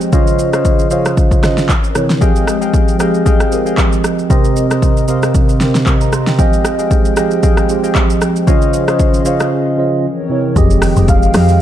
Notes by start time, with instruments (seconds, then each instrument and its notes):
Already playing: tine electric piano F3 C4 G4 G#4 C5 C#5 D#5, analog synth pad F3 G#3 D#5 G5
0.01 shaker
0.12 tine electric piano C#3 C#4 F4 C5 D#5, analog synth pad C#4 G#4, synth stab C5 C#5 D#5 F5, kick, shaker
0.27 shaker
0.39 shaker
0.53 synth stab C5 C#5 D#5 F5, cross-stick, shaker
0.65 kick, shaker
0.79 shaker
0.90 tine electric piano C#3 C#4 F4 C5 F5, synth stab C5 C#5 D#5 F5, shaker
1.05 cross-stick, shaker
1.17 kick, shaker
1.31 kick, shaker
1.42 tine electric piano C#3 C#4 F4 C5 D#5, cross-stick, snare, shaker
1.58 snare, shaker
1.69 analog synth pad E3 C4 A#4 C#5, kick, clap, shaker
1.84 shaker
1.95 tine electric piano C3 C4 E4 A#4 C#5, cross-stick, shaker
2.10 snare, shaker
2.21 tine electric piano F3 C4 G4 G#4 D#5, analog synth pad F3 G#3 D#5 G5, synth stab G#4 D#5 F5 G5, kick, shaker
2.36 shaker
2.47 cross-stick, shaker
2.61 synth stab G#4 D#5 F5 G5, shaker
2.74 kick, shaker
2.88 shaker
2.99 tine electric piano F3 C4 G4 G#4 D#5, synth stab G#4 D#5 F5 G5, cross-stick, shaker
3.14 shaker
3.26 synth stab G#4 D#5 F5 G5, kick, shaker
3.40 cross-stick, shaker
3.51 tine electric piano F3 C4 G4 G#4 A#4, shaker
3.66 synth stab G#4 D#5 F5 G5, shaker
3.78 kick, clap, shaker
3.93 shaker
4.04 cross-stick, shaker
4.19 shaker
4.29 tine electric piano C3 C4 G4 A#4 D#5, analog synth pad C4 A#4 D#5, synth stab A#4 C5 D#5, kick, shaker
4.44 shaker
4.56 shaker
4.70 synth stab A#4 C5 D#5, cross-stick, shaker
4.82 kick, shaker
4.97 shaker
5.08 tine electric piano C3 C4 G4 A#4 F5, synth stab A#4 C5 D#5, shaker
5.23 cross-stick, shaker
5.35 kick, shaker
5.49 shaker
5.60 tine electric piano C3 C4 G4 A#4 C5, snare, shaker
5.75 snare, shaker
5.86 kick, clap, shaker
6.01 tine electric piano A#5, shaker
6.13 tine electric piano C6, cross-stick, shaker
6.27 tine electric piano G5, snare, shaker
6.38 tine electric piano F3 C4 G4 G#4 D#5, analog synth pad F3 G#3 G5, synth stab G#4 D#5 F5 G5, kick, shaker
6.53 shaker
6.65 cross-stick, shaker
6.79 synth stab G#4 D#5 F5 G5, shaker
6.91 kick, shaker
7.05 shaker
7.16 tine electric piano F3 C4 G4 G#4 D#5, synth stab G#4 D#5 F5 G5, cross-stick, shaker
7.31 shaker
7.43 synth stab G#4 D#5 F5 G5, kick, shaker
7.57 cross-stick, shaker
7.69 tine electric piano F3 C4 G4 G#4 C5, shaker
7.83 synth stab G#4 D#5 F5 G5, shaker
7.95 kick, clap, shaker
8.10 shaker
8.21 cross-stick, shaker
8.36 shaker
8.47 tine electric piano C#3 C#4 F4 C5 D#5, analog synth pad C#4 G#4 D#5, synth stab C5 C#5 D#5 F5, kick, shaker
8.62 shaker
8.73 shaker
8.88 synth stab C5 C#5 D#5 F5, cross-stick, shaker
8.99 kick, shaker
9.14 shaker
9.25 tine electric piano C#3 C#4 F4 C5 F5, synth stab C5 C#5 D#5 F5, shaker
9.40 cross-stick, shaker
9.77 tine electric piano C#3 C#4 F4 C5 D#5
10.04 analog synth pad E3 C4 A#4 C#5
10.29 tine electric piano C3 C4 E4 A#4 C#5
10.55 log drum bass F1, analog synth pad D#3 G#3 G5, tine electric piano F3 C4 G4 G#4 D#5, kick, shaker
10.70 shaker
10.82 cross-stick, open hi-hat, shaker
10.96 log drum bass F1, tine electric piano F3 C4 G4 G#4 D#5, shaker
11.08 soft synth lead F5, kick, shaker
11.23 shaker
11.34 log drum bass F2, tine electric piano F3 C4 G4 G#4 D#5, cross-stick, open hi-hat, shaker
11.49 shaker